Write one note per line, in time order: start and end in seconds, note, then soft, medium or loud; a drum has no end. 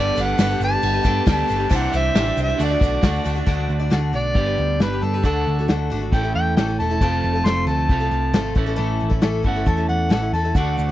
0.00 0.16 G3 medium
0.00 0.14 A3 medium
0.00 0.18 B3 loud
0.00 0.15 D4 medium
0.00 0.16 G4 medium
0.00 1.69 G4 medium
0.00 0.16 A4 loud
0.00 0.16 B4 medium
0.00 1.68 B4 medium
0.00 0.23 D5 loud
0.00 1.69 A5 medium
0.00 3.44 D6 medium
0.07 shaker soft
0.16 0.32 G1 loud
0.16 0.38 A3 medium
0.16 0.39 B3 medium
0.16 0.39 D4 medium
0.16 0.39 G4 medium
0.16 0.41 A4 medium
0.16 0.39 B4 medium
0.16 ride medium
0.16 shaker medium
0.22 0.64 F#5 loud
0.38 0.54 G1 medium
0.38 0.50 G3 medium
0.38 0.50 A3 medium
0.38 1.07 B3 medium
0.38 0.51 D4 medium
0.38 0.50 G4 medium
0.38 1.05 A4 medium
0.38 0.49 B4 medium
0.38 snare loud
0.38 ride loud
0.38 shaker loud
0.50 0.62 D4 soft
0.50 0.62 G4 medium
0.50 0.61 B4 medium
0.50 shaker soft
0.60 0.75 G1 medium
0.60 0.73 A3 medium
0.60 0.73 D4 medium
0.60 0.72 G4 medium
0.60 0.71 B4 medium
0.60 1.25 A5 loud
0.60 ride medium
0.60 shaker medium
0.72 0.95 D4 soft
0.72 0.94 G4 soft
0.72 0.93 B4 medium
0.82 0.98 G1 loud
0.82 ride loud
0.82 shaker medium
0.94 1.03 D4 soft
0.94 1.03 G4 soft
0.94 1.03 B4 medium
1.03 1.20 G2 loud
1.03 1.25 A3 medium
1.03 1.25 D4 medium
1.03 1.26 G4 medium
1.03 1.28 A4 medium
1.03 1.26 B4 medium
1.03 kick loud
1.03 ride medium
1.03 shaker medium
1.08 1.28 B3 medium
1.26 1.42 D2 medium
1.26 1.48 G3 medium
1.26 1.46 A3 medium
1.26 1.50 B3 loud
1.26 1.47 D4 medium
1.26 1.47 G4 medium
1.26 1.48 A4 loud
1.26 1.48 B4 medium
1.26 kick loud
1.26 snare loud
1.26 ride loud
1.26 shaker medium
1.32 1.78 A5 loud
1.38 shaker soft
1.47 1.65 G1 loud
1.47 1.59 A3 medium
1.47 1.71 B3 medium
1.47 1.58 D4 medium
1.47 1.58 G4 medium
1.47 1.70 A4 medium
1.47 1.57 B4 medium
1.47 ride medium
1.47 shaker medium
1.58 1.69 D4 medium
1.58 1.70 G4 soft
1.58 1.70 B4 medium
1.69 1.86 C2 loud
1.69 1.92 C3 medium
1.69 1.92 E3 medium
1.69 1.92 G3 medium
1.69 1.92 D4 medium
1.69 1.92 E4 medium
1.69 1.91 G4 loud
1.69 1.93 C5 loud
1.69 2.58 C5 medium
1.69 2.58 E5 medium
1.69 2.58 G5 medium
1.69 kick loud
1.69 ride loud
1.69 shaker loud
1.77 1.98 F#5 loud
1.83 shaker soft
1.92 2.08 C2 medium
1.92 2.14 G3 medium
1.92 2.15 D4 medium
1.92 2.15 E4 medium
1.92 2.14 G4 medium
1.92 2.16 C5 medium
1.92 ride medium
1.92 shaker medium
1.97 2.39 E5 loud
2.04 shaker soft
2.15 2.30 A1 loud
2.15 2.26 C3 medium
2.15 2.27 E3 medium
2.15 2.26 G3 medium
2.15 2.26 D4 medium
2.15 2.25 E4 medium
2.15 2.58 G4 medium
2.15 2.24 C5 medium
2.15 snare loud
2.15 ride loud
2.15 shaker loud
2.26 2.37 G3 soft
2.26 2.37 D4 soft
2.26 2.37 E4 medium
2.26 2.37 C5 soft
2.26 shaker soft
2.37 2.52 C2 loud
2.37 2.49 G3 medium
2.37 2.49 D4 medium
2.37 2.49 E4 medium
2.37 2.48 C5 medium
2.37 ride medium
2.37 shaker medium
2.42 2.64 E5 medium
2.48 2.60 G3 soft
2.48 2.59 D4 soft
2.48 2.60 E4 soft
2.48 2.60 C5 soft
2.48 snare soft
2.59 2.74 D2 loud
2.59 2.71 D3 medium
2.59 2.71 A3 medium
2.59 2.71 D4 medium
2.59 2.71 F#4 medium
2.59 3.47 A4 medium
2.59 2.69 D5 medium
2.59 3.48 D5 medium
2.59 3.27 D5 medium
2.59 3.47 F#5 medium
2.59 ride medium
2.59 shaker loud
2.70 2.82 D4 soft
2.70 2.82 F#4 soft
2.70 2.81 D5 medium
2.81 2.96 B1 loud
2.81 3.02 A3 medium
2.81 3.02 D4 medium
2.81 3.02 F#4 medium
2.81 3.03 D5 medium
2.81 kick loud
2.81 ride medium
2.81 shaker medium
3.02 3.18 D2 medium
3.02 3.25 D3 medium
3.02 3.23 A3 medium
3.02 3.24 D4 medium
3.02 3.24 F#4 medium
3.02 3.25 D5 medium
3.02 kick loud
3.02 snare loud
3.02 ride loud
3.02 shaker loud
3.15 shaker soft
3.24 3.41 D2 medium
3.24 3.36 A3 medium
3.24 3.36 D4 medium
3.24 3.34 F#4 medium
3.24 3.34 D5 medium
3.24 ride medium
3.24 shaker medium
3.35 3.45 D4 soft
3.35 3.47 F#4 medium
3.35 3.46 D5 medium
3.35 shaker soft
3.46 3.67 D2 medium
3.46 3.80 D3 medium
3.46 3.80 A3 medium
3.46 3.80 D4 medium
3.46 3.80 F#4 medium
3.46 3.78 D5 medium
3.46 kick loud
3.46 closed hi-hat medium
3.59 snare soft
3.69 3.90 D2 medium
3.69 closed hi-hat medium
3.80 3.90 D4 soft
3.80 3.90 F#4 soft
3.80 3.91 D5 medium
3.90 4.12 D2 medium
3.90 4.13 D3 medium
3.90 4.12 A3 medium
3.90 4.12 D4 medium
3.90 4.13 F#4 medium
3.90 4.13 D5 medium
3.90 snare loud
3.90 closed hi-hat medium
4.13 4.34 B1 medium
4.13 4.36 A3 medium
4.13 4.36 D4 medium
4.13 4.36 F#4 medium
4.13 4.36 D5 medium
4.13 4.79 D5 loud
4.13 closed hi-hat medium
4.34 4.56 G1 medium
4.34 5.22 G2 medium
4.34 5.22 D3 medium
4.34 4.47 G3 medium
4.34 5.23 B3 medium
4.34 4.47 D4 medium
4.34 4.46 G4 medium
4.34 kick loud
4.34 closed hi-hat medium
4.39 4.45 B4 medium
4.46 4.81 D4 soft
4.46 4.80 G4 soft
4.46 4.80 B4 soft
4.58 4.78 D2 medium
4.58 closed hi-hat medium
4.80 5.00 G1 medium
4.80 4.92 G3 medium
4.80 4.92 D4 medium
4.80 4.92 G4 medium
4.80 5.05 B4 medium
4.80 4.91 B4 medium
4.80 snare loud
4.80 closed hi-hat medium
4.92 5.01 D4 soft
4.92 5.02 G4 soft
4.92 5.03 B4 soft
5.02 5.22 G2 medium
5.02 5.13 G3 medium
5.02 5.13 D4 medium
5.02 5.14 G4 medium
5.02 5.24 A4 medium
5.02 5.13 B4 medium
5.02 closed hi-hat medium
5.14 5.24 D4 soft
5.14 5.24 G4 soft
5.14 5.25 B4 medium
5.23 5.44 D2 medium
5.23 5.58 D3 medium
5.23 5.58 A3 medium
5.23 5.58 D4 medium
5.23 5.58 F#4 medium
5.23 5.68 A4 medium
5.23 5.57 A4 medium
5.23 kick loud
5.23 closed hi-hat medium
5.46 5.67 D2 medium
5.46 closed hi-hat medium
5.58 5.68 D4 soft
5.58 5.68 F#4 soft
5.58 5.69 A4 soft
5.58 snare soft
5.68 5.89 D2 medium
5.68 5.91 D3 medium
5.68 5.89 A3 medium
5.68 5.90 D4 medium
5.68 5.90 F#4 medium
5.68 5.91 A4 medium
5.68 snare loud
5.68 closed hi-hat medium
5.90 6.12 G#1 medium
5.90 6.02 A3 medium
5.90 6.01 D4 medium
5.90 6.01 F#4 medium
5.90 5.99 A4 medium
5.90 closed hi-hat medium
6.00 6.13 D4 soft
6.00 6.13 F#4 soft
6.00 6.12 A4 soft
6.12 6.33 A1 medium
6.12 7.00 A2 medium
6.12 7.00 E3 medium
6.12 6.24 A3 medium
6.12 6.23 C#4 medium
6.12 6.23 E4 medium
6.12 6.22 A4 medium
6.12 6.34 G5 medium
6.12 kick loud
6.12 closed hi-hat medium
6.23 6.57 A3 soft
6.23 6.57 C#4 soft
6.23 6.57 E4 soft
6.23 6.57 A4 soft
6.35 6.55 E2 medium
6.35 6.55 G5 loud
6.35 closed hi-hat medium
6.56 6.77 A1 medium
6.56 6.69 A2 medium
6.56 6.69 E3 medium
6.56 6.68 A3 medium
6.56 6.67 C#4 medium
6.56 6.67 E4 medium
6.56 6.66 A4 medium
6.56 6.78 G5 medium
6.56 snare loud
6.56 closed hi-hat medium
6.67 6.79 A3 soft
6.67 6.79 C#4 soft
6.67 6.79 E4 soft
6.67 6.79 A4 medium
6.79 7.00 E1 medium
6.79 6.91 A3 medium
6.79 6.90 C#4 medium
6.79 6.90 E4 medium
6.79 6.88 A4 medium
6.79 7.47 A5 medium
6.79 closed hi-hat medium
6.90 7.00 A3 soft
6.90 7.02 C#4 soft
6.90 7.02 E4 medium
6.90 7.01 A4 medium
7.01 7.21 F1 medium
7.01 7.88 F2 medium
7.01 7.88 C3 medium
7.01 7.35 F3 medium
7.01 7.35 A3 medium
7.01 7.35 C4 medium
7.01 7.34 F4 medium
7.01 7.32 A4 medium
7.01 kick loud
7.01 closed hi-hat medium
7.23 7.44 F1 loud
7.23 closed hi-hat medium
7.34 7.45 C4 soft
7.34 7.45 F4 soft
7.34 7.45 A4 soft
7.45 7.65 F1 medium
7.45 7.68 F3 medium
7.45 7.65 A3 medium
7.45 7.67 C4 medium
7.45 7.68 F4 medium
7.45 7.68 A4 medium
7.45 7.66 C6 medium
7.45 snare loud
7.45 closed hi-hat medium
7.66 7.87 D2 medium
7.66 7.89 A3 medium
7.66 7.90 C4 medium
7.66 7.90 F4 medium
7.66 7.91 A4 medium
7.66 8.53 A5 loud
7.66 closed hi-hat medium
7.89 8.10 C2 medium
7.89 8.55 F2 medium
7.89 8.55 C3 medium
7.89 8.56 F3 medium
7.89 8.01 A3 medium
7.89 8.01 C4 medium
7.89 8.00 F4 medium
7.89 7.99 A4 medium
7.89 kick loud
7.89 closed hi-hat medium
8.00 8.33 C4 soft
8.00 8.34 F4 soft
8.00 8.33 A4 medium
8.11 8.32 C2 loud
8.11 closed hi-hat medium
8.33 8.54 G#1 medium
8.33 8.56 F3 medium
8.33 8.54 A3 medium
8.33 8.55 C4 medium
8.33 8.55 F4 medium
8.33 8.56 A4 medium
8.33 snare loud
8.33 closed hi-hat loud
8.55 8.76 A1 medium
8.55 9.43 A2 medium
8.55 9.44 E3 medium
8.55 8.66 A3 medium
8.55 8.66 C#4 medium
8.55 8.65 E4 medium
8.55 8.65 A4 medium
8.55 kick loud
8.55 closed hi-hat medium
8.66 8.75 A3 medium
8.66 8.76 C#4 medium
8.66 8.76 E4 medium
8.66 8.76 A4 medium
8.76 8.99 A1 medium
8.76 9.10 A2 medium
8.76 9.11 E3 medium
8.76 9.11 A3 medium
8.76 9.10 C#4 medium
8.76 9.09 E4 medium
8.76 9.08 A4 medium
8.76 closed hi-hat medium
9.00 9.22 A1 medium
9.00 closed hi-hat medium
9.10 9.21 A3 soft
9.10 9.22 C#4 soft
9.10 9.21 E4 medium
9.10 9.22 A4 medium
9.10 kick medium
9.10 snare soft
9.21 9.43 A1 medium
9.21 9.44 A2 medium
9.21 9.45 E3 medium
9.21 9.41 A3 medium
9.21 9.42 C#4 medium
9.21 9.43 E4 medium
9.21 9.43 A4 loud
9.21 snare loud
9.21 closed hi-hat medium
9.43 9.65 G1 medium
9.43 9.55 A3 medium
9.43 9.55 C#4 medium
9.43 9.55 E4 medium
9.43 9.55 A4 medium
9.43 kick medium
9.43 closed hi-hat medium
9.47 10.33 A2 medium
9.47 10.33 E3 medium
9.47 9.70 F#5 medium
9.56 9.65 A3 soft
9.56 9.66 C#4 soft
9.56 9.66 E4 soft
9.56 9.67 A4 soft
9.66 9.87 E2 loud
9.66 9.77 A3 medium
9.66 9.78 C#4 medium
9.66 9.77 E4 medium
9.66 9.76 A4 medium
9.66 9.88 A5 medium
9.66 kick loud
9.66 closed hi-hat medium
9.77 10.09 A3 soft
9.77 10.09 C#4 soft
9.77 10.09 E4 soft
9.77 10.09 A4 medium
9.89 10.09 E2 medium
9.89 10.10 F#5 medium
9.89 closed hi-hat medium
10.09 10.31 A1 medium
10.09 10.21 A2 medium
10.09 10.21 E3 medium
10.09 10.22 A3 medium
10.09 10.22 C#4 medium
10.09 10.21 E4 medium
10.09 10.21 A4 medium
10.09 10.32 F#5 medium
10.09 snare loud
10.09 closed hi-hat medium
10.22 10.32 A3 soft
10.22 10.33 C#4 soft
10.22 10.33 E4 soft
10.22 10.33 A4 soft
10.33 10.53 E2 medium
10.33 10.45 A3 medium
10.33 10.44 C#4 medium
10.33 10.44 E4 medium
10.33 10.42 A4 medium
10.33 10.58 A5 medium
10.33 closed hi-hat medium
10.44 10.56 A3 soft
10.44 10.56 C#4 soft
10.44 10.56 E4 soft
10.44 10.55 A4 soft
10.54 10.75 D2 medium
10.54 10.89 D3 medium
10.54 10.89 A3 medium
10.54 10.89 D4 medium
10.54 10.89 F#4 medium
10.54 10.91 A4 medium
10.54 10.88 A4 medium
10.54 10.91 D5 soft
10.54 10.77 F#5 medium
10.54 10.91 F#5 medium
10.54 10.91 D6 medium
10.54 kick loud
10.54 closed hi-hat medium
10.54 shaker medium
10.77 10.91 D2 medium
10.77 10.91 F#5 medium
10.77 closed hi-hat medium
10.77 shaker medium